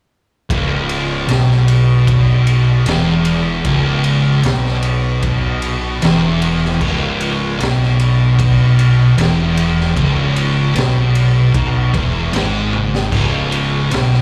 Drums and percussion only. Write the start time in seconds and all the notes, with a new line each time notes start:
0.50 kick, ride
0.89 ride
1.28 snare, ride
1.51 snare
1.68 ride
2.07 kick, ride
2.47 ride
2.86 snare, ride
3.25 ride
3.64 kick, ride
4.04 ride
4.43 snare, ride
4.66 snare
4.82 ride
5.22 kick, ride
5.62 ride
6.02 snare, ride
6.42 ride
6.64 snare
6.81 kick, crash
7.20 ride
7.60 snare, ride
7.83 snare
7.99 ride
8.39 kick, ride
8.79 ride
9.18 snare, ride
9.57 ride
9.80 snare
9.97 kick, ride
10.36 ride
10.75 snare, ride
11.15 ride
11.54 kick, ride
11.94 kick, ride
12.33 snare, ride
12.73 high tom
12.95 snare
13.12 kick, crash
13.52 ride
13.91 snare, ride
14.14 snare